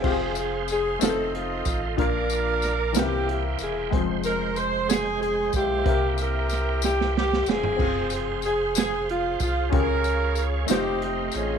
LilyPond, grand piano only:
<<
  \new Staff \with { instrumentName = "Grand piano" } { \time 6/8 \key f \minor \tempo 4. = 62 <c' f' g' aes'>4. <a c' ees' f' bes' c''>4. | <d' f' bes'>4. <e bes c' ees' e' bes'>4. | <f aes c'>2. | <bes c' bes' e''>2. |
<c' f' aes'>2. | <des' f' g' aes'>4. <a ees' f' c''>4. | }
  \new Staff \with { instrumentName = "Grand piano" } { \clef bass \time 6/8 \key f \minor r2. | bes,4. c4. | r2. | c4. r4. |
r2. | des4. r4. | }
>>